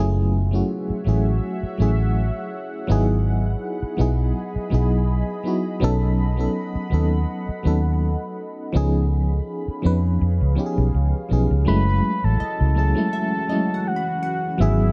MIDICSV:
0, 0, Header, 1, 7, 480
1, 0, Start_track
1, 0, Tempo, 731707
1, 1895, Time_signature, 4, 2, 24, 8
1, 9788, End_track
2, 0, Start_track
2, 0, Title_t, "Soft synth lead"
2, 0, Program_c, 0, 80
2, 7660, Note_on_c, 0, 83, 119
2, 8030, Note_on_c, 0, 81, 107
2, 8040, Note_off_c, 0, 83, 0
2, 8378, Note_off_c, 0, 81, 0
2, 8381, Note_on_c, 0, 81, 114
2, 9101, Note_on_c, 0, 78, 103
2, 9111, Note_off_c, 0, 81, 0
2, 9578, Note_off_c, 0, 78, 0
2, 9581, Note_on_c, 0, 76, 102
2, 9788, Note_off_c, 0, 76, 0
2, 9788, End_track
3, 0, Start_track
3, 0, Title_t, "Synth pluck"
3, 0, Program_c, 1, 84
3, 8134, Note_on_c, 1, 75, 70
3, 8613, Note_on_c, 1, 76, 76
3, 8634, Note_off_c, 1, 75, 0
3, 8852, Note_on_c, 1, 75, 60
3, 9014, Note_on_c, 1, 78, 57
3, 9113, Note_off_c, 1, 76, 0
3, 9160, Note_on_c, 1, 83, 56
3, 9325, Note_off_c, 1, 78, 0
3, 9333, Note_on_c, 1, 78, 73
3, 9353, Note_off_c, 1, 75, 0
3, 9627, Note_off_c, 1, 83, 0
3, 9787, Note_off_c, 1, 78, 0
3, 9788, End_track
4, 0, Start_track
4, 0, Title_t, "Ambient pad"
4, 0, Program_c, 2, 92
4, 0, Note_on_c, 2, 66, 76
4, 0, Note_on_c, 2, 73, 71
4, 0, Note_on_c, 2, 76, 90
4, 0, Note_on_c, 2, 78, 70
4, 1876, Note_off_c, 2, 66, 0
4, 1876, Note_off_c, 2, 73, 0
4, 1876, Note_off_c, 2, 76, 0
4, 1895, Note_on_c, 2, 68, 74
4, 1895, Note_on_c, 2, 75, 69
4, 1896, Note_on_c, 2, 83, 86
4, 3789, Note_off_c, 2, 78, 0
4, 3796, Note_off_c, 2, 68, 0
4, 3814, Note_on_c, 2, 69, 73
4, 3815, Note_on_c, 2, 78, 70
4, 5709, Note_off_c, 2, 75, 0
4, 5709, Note_off_c, 2, 83, 0
4, 5715, Note_off_c, 2, 69, 0
4, 5716, Note_off_c, 2, 78, 0
4, 5734, Note_on_c, 2, 68, 77
4, 5734, Note_on_c, 2, 77, 69
4, 5735, Note_on_c, 2, 73, 72
4, 5735, Note_on_c, 2, 83, 89
4, 7635, Note_off_c, 2, 68, 0
4, 7635, Note_off_c, 2, 77, 0
4, 7636, Note_off_c, 2, 73, 0
4, 7636, Note_off_c, 2, 83, 0
4, 7656, Note_on_c, 2, 52, 78
4, 7656, Note_on_c, 2, 61, 75
4, 7657, Note_on_c, 2, 54, 71
4, 7657, Note_on_c, 2, 66, 89
4, 9556, Note_off_c, 2, 61, 0
4, 9557, Note_off_c, 2, 54, 0
4, 9557, Note_off_c, 2, 66, 0
4, 9573, Note_on_c, 2, 59, 73
4, 9573, Note_on_c, 2, 68, 84
4, 9574, Note_on_c, 2, 56, 70
4, 9788, Note_off_c, 2, 52, 0
4, 9788, Note_off_c, 2, 56, 0
4, 9788, Note_off_c, 2, 59, 0
4, 9788, Note_off_c, 2, 68, 0
4, 9788, End_track
5, 0, Start_track
5, 0, Title_t, "FM electric piano"
5, 0, Program_c, 3, 5
5, 0, Note_on_c, 3, 54, 103
5, 0, Note_on_c, 3, 57, 94
5, 0, Note_on_c, 3, 61, 97
5, 0, Note_on_c, 3, 64, 98
5, 0, Note_on_c, 3, 68, 121
5, 82, Control_c, 3, 64, 127
5, 286, Note_off_c, 3, 54, 0
5, 289, Note_off_c, 3, 57, 0
5, 293, Note_off_c, 3, 61, 0
5, 296, Note_off_c, 3, 64, 0
5, 300, Note_off_c, 3, 68, 0
5, 335, Note_on_c, 3, 54, 73
5, 341, Note_on_c, 3, 57, 72
5, 348, Note_on_c, 3, 61, 71
5, 355, Note_on_c, 3, 64, 70
5, 362, Note_on_c, 3, 66, 85
5, 644, Note_off_c, 3, 54, 0
5, 648, Note_off_c, 3, 57, 0
5, 651, Note_off_c, 3, 61, 0
5, 655, Note_off_c, 3, 64, 0
5, 658, Note_off_c, 3, 66, 0
5, 685, Note_on_c, 3, 54, 77
5, 691, Note_on_c, 3, 57, 70
5, 699, Note_on_c, 3, 61, 71
5, 705, Note_on_c, 3, 64, 68
5, 712, Note_on_c, 3, 68, 86
5, 1109, Note_off_c, 3, 54, 0
5, 1112, Note_off_c, 3, 57, 0
5, 1116, Note_off_c, 3, 61, 0
5, 1119, Note_off_c, 3, 64, 0
5, 1122, Note_off_c, 3, 68, 0
5, 1166, Note_on_c, 3, 54, 76
5, 1173, Note_on_c, 3, 57, 67
5, 1179, Note_on_c, 3, 61, 68
5, 1186, Note_on_c, 3, 64, 68
5, 1193, Note_on_c, 3, 68, 81
5, 1799, Note_off_c, 3, 54, 0
5, 1802, Note_off_c, 3, 57, 0
5, 1806, Note_off_c, 3, 61, 0
5, 1809, Note_off_c, 3, 64, 0
5, 1813, Note_off_c, 3, 68, 0
5, 1885, Note_on_c, 3, 54, 108
5, 1891, Note_on_c, 3, 59, 97
5, 1899, Note_on_c, 3, 63, 98
5, 1904, Control_c, 3, 64, 0
5, 1905, Note_on_c, 3, 64, 98
5, 1912, Note_on_c, 3, 68, 120
5, 2023, Control_c, 3, 64, 127
5, 2518, Note_off_c, 3, 54, 0
5, 2522, Note_off_c, 3, 59, 0
5, 2525, Note_off_c, 3, 63, 0
5, 2529, Note_off_c, 3, 64, 0
5, 2532, Note_off_c, 3, 68, 0
5, 2603, Note_on_c, 3, 54, 80
5, 2611, Note_on_c, 3, 59, 78
5, 2618, Note_on_c, 3, 63, 75
5, 2623, Note_on_c, 3, 64, 71
5, 2631, Note_on_c, 3, 68, 88
5, 3028, Note_off_c, 3, 54, 0
5, 3032, Note_off_c, 3, 59, 0
5, 3035, Note_off_c, 3, 63, 0
5, 3038, Note_off_c, 3, 64, 0
5, 3042, Note_off_c, 3, 68, 0
5, 3083, Note_on_c, 3, 54, 84
5, 3091, Note_on_c, 3, 59, 77
5, 3097, Note_on_c, 3, 63, 72
5, 3104, Note_on_c, 3, 64, 74
5, 3111, Note_on_c, 3, 68, 92
5, 3508, Note_off_c, 3, 54, 0
5, 3512, Note_off_c, 3, 59, 0
5, 3515, Note_off_c, 3, 63, 0
5, 3519, Note_off_c, 3, 64, 0
5, 3522, Note_off_c, 3, 68, 0
5, 3565, Note_on_c, 3, 54, 78
5, 3571, Note_on_c, 3, 59, 72
5, 3578, Note_on_c, 3, 63, 69
5, 3585, Note_on_c, 3, 64, 74
5, 3592, Note_on_c, 3, 66, 85
5, 3779, Note_off_c, 3, 54, 0
5, 3782, Note_off_c, 3, 59, 0
5, 3786, Note_off_c, 3, 63, 0
5, 3789, Note_off_c, 3, 64, 0
5, 3793, Note_off_c, 3, 66, 0
5, 3804, Note_on_c, 3, 54, 109
5, 3811, Note_on_c, 3, 59, 97
5, 3818, Note_on_c, 3, 61, 100
5, 3823, Control_c, 3, 64, 0
5, 3825, Note_on_c, 3, 63, 101
5, 3832, Note_on_c, 3, 69, 120
5, 3922, Control_c, 3, 64, 127
5, 4125, Note_off_c, 3, 54, 0
5, 4129, Note_off_c, 3, 59, 0
5, 4132, Note_off_c, 3, 61, 0
5, 4136, Note_off_c, 3, 63, 0
5, 4139, Note_off_c, 3, 69, 0
5, 4174, Note_on_c, 3, 54, 76
5, 4180, Note_on_c, 3, 59, 71
5, 4188, Note_on_c, 3, 61, 69
5, 4195, Note_on_c, 3, 63, 67
5, 4201, Note_on_c, 3, 69, 86
5, 4484, Note_off_c, 3, 54, 0
5, 4487, Note_off_c, 3, 59, 0
5, 4491, Note_off_c, 3, 61, 0
5, 4494, Note_off_c, 3, 63, 0
5, 4497, Note_off_c, 3, 69, 0
5, 4525, Note_on_c, 3, 54, 82
5, 4531, Note_on_c, 3, 59, 73
5, 4539, Note_on_c, 3, 61, 71
5, 4545, Note_on_c, 3, 63, 74
5, 4552, Note_on_c, 3, 69, 92
5, 4949, Note_off_c, 3, 54, 0
5, 4952, Note_off_c, 3, 59, 0
5, 4956, Note_off_c, 3, 61, 0
5, 4959, Note_off_c, 3, 63, 0
5, 4963, Note_off_c, 3, 69, 0
5, 5005, Note_on_c, 3, 54, 77
5, 5012, Note_on_c, 3, 59, 72
5, 5019, Note_on_c, 3, 61, 69
5, 5026, Note_on_c, 3, 63, 69
5, 5033, Note_on_c, 3, 69, 81
5, 5639, Note_off_c, 3, 54, 0
5, 5642, Note_off_c, 3, 59, 0
5, 5645, Note_off_c, 3, 61, 0
5, 5649, Note_off_c, 3, 63, 0
5, 5652, Note_off_c, 3, 69, 0
5, 5724, Note_on_c, 3, 53, 107
5, 5731, Note_on_c, 3, 59, 95
5, 5738, Note_on_c, 3, 61, 93
5, 5742, Control_c, 3, 64, 0
5, 5744, Note_on_c, 3, 63, 97
5, 5751, Note_on_c, 3, 68, 117
5, 5859, Control_c, 3, 64, 127
5, 6358, Note_off_c, 3, 53, 0
5, 6361, Note_off_c, 3, 59, 0
5, 6365, Note_off_c, 3, 61, 0
5, 6368, Note_off_c, 3, 63, 0
5, 6372, Note_off_c, 3, 68, 0
5, 6442, Note_on_c, 3, 53, 82
5, 6449, Note_on_c, 3, 59, 72
5, 6457, Note_on_c, 3, 61, 74
5, 6463, Note_on_c, 3, 63, 69
5, 6470, Note_on_c, 3, 71, 88
5, 6868, Note_off_c, 3, 53, 0
5, 6871, Note_off_c, 3, 59, 0
5, 6875, Note_off_c, 3, 61, 0
5, 6878, Note_off_c, 3, 63, 0
5, 6881, Note_off_c, 3, 71, 0
5, 6923, Note_on_c, 3, 53, 77
5, 6930, Note_on_c, 3, 59, 75
5, 6938, Note_on_c, 3, 61, 79
5, 6944, Note_on_c, 3, 63, 73
5, 6951, Note_on_c, 3, 67, 72
5, 6989, Note_off_c, 3, 67, 0
5, 6994, Note_on_c, 3, 68, 90
5, 7348, Note_off_c, 3, 53, 0
5, 7352, Note_off_c, 3, 59, 0
5, 7355, Note_off_c, 3, 61, 0
5, 7359, Note_off_c, 3, 63, 0
5, 7383, Note_off_c, 3, 68, 0
5, 7404, Note_on_c, 3, 53, 74
5, 7411, Note_on_c, 3, 59, 71
5, 7418, Note_on_c, 3, 61, 70
5, 7425, Note_on_c, 3, 63, 68
5, 7431, Note_on_c, 3, 68, 86
5, 7619, Note_off_c, 3, 53, 0
5, 7622, Note_off_c, 3, 59, 0
5, 7626, Note_off_c, 3, 61, 0
5, 7629, Note_off_c, 3, 63, 0
5, 7632, Note_off_c, 3, 68, 0
5, 7642, Note_on_c, 3, 54, 99
5, 7648, Note_on_c, 3, 57, 94
5, 7656, Note_on_c, 3, 61, 91
5, 7663, Note_on_c, 3, 64, 93
5, 7664, Control_c, 3, 64, 0
5, 7669, Note_on_c, 3, 56, 113
5, 7783, Control_c, 3, 64, 127
5, 8277, Note_off_c, 3, 54, 0
5, 8280, Note_off_c, 3, 57, 0
5, 8284, Note_off_c, 3, 61, 0
5, 8287, Note_off_c, 3, 64, 0
5, 8290, Note_off_c, 3, 56, 0
5, 8362, Note_on_c, 3, 54, 66
5, 8370, Note_on_c, 3, 57, 59
5, 8377, Note_on_c, 3, 61, 66
5, 8383, Note_on_c, 3, 64, 64
5, 8389, Note_on_c, 3, 68, 73
5, 8480, Note_off_c, 3, 54, 0
5, 8484, Note_off_c, 3, 57, 0
5, 8487, Note_off_c, 3, 61, 0
5, 8491, Note_off_c, 3, 64, 0
5, 8493, Note_on_c, 3, 54, 74
5, 8494, Note_off_c, 3, 68, 0
5, 8499, Note_on_c, 3, 57, 71
5, 8506, Note_on_c, 3, 61, 68
5, 8513, Note_on_c, 3, 64, 65
5, 8520, Note_on_c, 3, 56, 81
5, 8803, Note_off_c, 3, 54, 0
5, 8806, Note_off_c, 3, 57, 0
5, 8810, Note_off_c, 3, 61, 0
5, 8813, Note_off_c, 3, 64, 0
5, 8817, Note_off_c, 3, 56, 0
5, 8844, Note_on_c, 3, 54, 75
5, 8850, Note_on_c, 3, 57, 68
5, 8858, Note_on_c, 3, 61, 73
5, 8864, Note_on_c, 3, 64, 68
5, 8872, Note_on_c, 3, 56, 84
5, 9478, Note_off_c, 3, 54, 0
5, 9481, Note_off_c, 3, 57, 0
5, 9485, Note_off_c, 3, 61, 0
5, 9488, Note_off_c, 3, 64, 0
5, 9492, Note_off_c, 3, 56, 0
5, 9565, Note_on_c, 3, 54, 98
5, 9571, Note_on_c, 3, 59, 86
5, 9585, Control_c, 3, 64, 0
5, 9585, Note_on_c, 3, 64, 87
5, 9591, Note_on_c, 3, 68, 113
5, 9682, Control_c, 3, 64, 127
5, 9788, Note_off_c, 3, 54, 0
5, 9788, Note_off_c, 3, 59, 0
5, 9788, Note_off_c, 3, 64, 0
5, 9788, Note_off_c, 3, 68, 0
5, 9788, End_track
6, 0, Start_track
6, 0, Title_t, "Fingered electric bass"
6, 0, Program_c, 4, 33
6, 0, Note_on_c, 4, 30, 104
6, 399, Note_off_c, 4, 30, 0
6, 698, Note_on_c, 4, 33, 81
6, 908, Note_off_c, 4, 33, 0
6, 1178, Note_on_c, 4, 33, 78
6, 1502, Note_off_c, 4, 33, 0
6, 1898, Note_on_c, 4, 32, 99
6, 2319, Note_off_c, 4, 32, 0
6, 2618, Note_on_c, 4, 35, 92
6, 2828, Note_off_c, 4, 35, 0
6, 3098, Note_on_c, 4, 35, 90
6, 3422, Note_off_c, 4, 35, 0
6, 3818, Note_on_c, 4, 35, 100
6, 4239, Note_off_c, 4, 35, 0
6, 4539, Note_on_c, 4, 39, 88
6, 4748, Note_off_c, 4, 39, 0
6, 5019, Note_on_c, 4, 39, 93
6, 5342, Note_off_c, 4, 39, 0
6, 5739, Note_on_c, 4, 37, 103
6, 6160, Note_off_c, 4, 37, 0
6, 6459, Note_on_c, 4, 41, 83
6, 6669, Note_off_c, 4, 41, 0
6, 6699, Note_on_c, 4, 41, 90
6, 6811, Note_off_c, 4, 41, 0
6, 6828, Note_on_c, 4, 37, 87
6, 6924, Note_off_c, 4, 37, 0
6, 7068, Note_on_c, 4, 35, 90
6, 7164, Note_off_c, 4, 35, 0
6, 7178, Note_on_c, 4, 37, 84
6, 7291, Note_off_c, 4, 37, 0
6, 7418, Note_on_c, 4, 35, 90
6, 7531, Note_off_c, 4, 35, 0
6, 7548, Note_on_c, 4, 37, 84
6, 7644, Note_off_c, 4, 37, 0
6, 7658, Note_on_c, 4, 30, 109
6, 7868, Note_off_c, 4, 30, 0
6, 8028, Note_on_c, 4, 33, 93
6, 8123, Note_off_c, 4, 33, 0
6, 8267, Note_on_c, 4, 37, 83
6, 8477, Note_off_c, 4, 37, 0
6, 9576, Note_on_c, 4, 32, 101
6, 9787, Note_off_c, 4, 32, 0
6, 9788, End_track
7, 0, Start_track
7, 0, Title_t, "Muted fingered electric bass strokes"
7, 587, Note_on_c, 9, 29, 43
7, 653, Note_off_c, 9, 29, 0
7, 1068, Note_on_c, 9, 29, 46
7, 1133, Note_off_c, 9, 29, 0
7, 2507, Note_on_c, 9, 29, 43
7, 2572, Note_off_c, 9, 29, 0
7, 2987, Note_on_c, 9, 29, 47
7, 3053, Note_off_c, 9, 29, 0
7, 4428, Note_on_c, 9, 29, 47
7, 4494, Note_off_c, 9, 29, 0
7, 4909, Note_on_c, 9, 29, 45
7, 4974, Note_off_c, 9, 29, 0
7, 6348, Note_on_c, 9, 29, 45
7, 6414, Note_off_c, 9, 29, 0
7, 9788, End_track
0, 0, End_of_file